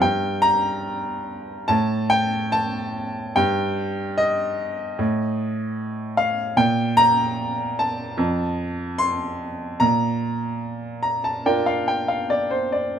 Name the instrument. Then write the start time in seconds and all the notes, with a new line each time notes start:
grand piano
0.00 G2 G5
0.42 A#5
1.68 A2 A5
2.10 G5
2.52 A5
3.36 G2 G5
4.18 D#5
4.99 A2
6.17 F5
6.57 A#2 G5
6.97 A#5
7.79 A5
8.17 F2
8.98 C6
9.80 A#2 A#5
11.03 A#5
11.24 A5
11.46 D4 F4 A#4 G5
11.66 F5
11.88 G5
12.08 F5
12.30 D5
12.50 C5
12.72 D5